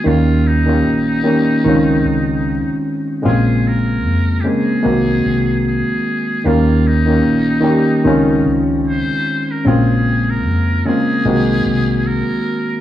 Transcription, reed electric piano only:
X:1
M:4/4
L:1/16
Q:"Swing 16ths" 1/4=75
K:Bbm
V:1 name="Reed electric piano"
[E,=G,B,DF]2 z [E,G,B,DF]2 z [E,G,B,DE]2 [E,A,CDF]6 z2 | [D,A,B,CF]4 z2 [D,A,B,CA]2 [E,A,B,CG]6 z2 | [E,=G,B,DF]2 z [E,G,B,DF]2 z [E,G,B,D=G]2 [E,A,CDF]6 z2 | [D,A,B,CF]4 z2 [D,A,B,CF]2 [E,A,B,CG]6 z2 |]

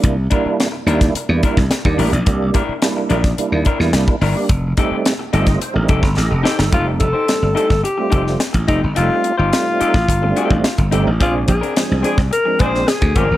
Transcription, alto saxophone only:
X:1
M:4/4
L:1/16
Q:1/4=108
K:F
V:1 name="Alto saxophone"
z16 | z16 | z16 | F2 A4 A2 G4 z2 _E2 |
F3 F8- F3 z2 | F2 _A4 A2 B2 c2 A2 B2 |]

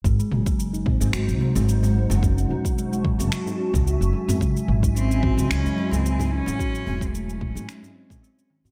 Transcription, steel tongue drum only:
X:1
M:4/4
L:1/16
Q:"Swing 16ths" 1/4=110
K:none
V:1 name="Steel tongue drum" clef=bass
^G, G, ^F, G, F, ^D ^B, B, ^F F, G, G, F, G, F, D | ^C C ^F ^F, ^G, G, F, G, z ^D C C F F, G, G, | ^F, ^G, F, ^D ^C C ^F F, G, G, F, G, F, D C C | ^F ^F, ^G, G, F, G, F, ^D ^C C ^B, G, B, C ^D, F |]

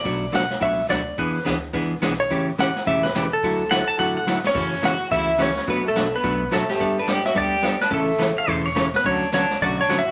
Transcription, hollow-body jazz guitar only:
X:1
M:4/4
L:1/8
Q:"Swing" 1/4=214
K:D
V:1 name="Hollow-body jazz guitar"
[B,,F,A,DF] z [B,,F,A,DF] z [B,,F,A,DF] z [B,,F,A,DF] z | [E,B,D^G] z [E,B,DG] z [E,B,DG] z [E,B,DG] z | [C,E,A,CG] z [C,E,A,CG] z [C,E,A,CG] z [C,E,A,CG] z | [D,F,A,EF] z [D,F,A,EF] z [D,F,A,EF] z [D,F,A,EF] z |
[C,E,A,CF] z [C,E,A,CF] z [C,E,A,CF] z [C,E,A,CF] z | [B,,F,A,DF] z [B,,F,A,DF] z [B,,F,A,DF] z [B,,F,A,DF] z | [G,B,DA] z [G,B,DA] z [G,B,DA] z [G,B,DA] z | [C,E,A,CA] z [C,E,A,CA] z [C,E,A,CA] z [C,E,A,CA] z |
[D,F,A,CF] z [D,F,A,CF] z [D,F,A,CF] z [D,F,A,CF] z |]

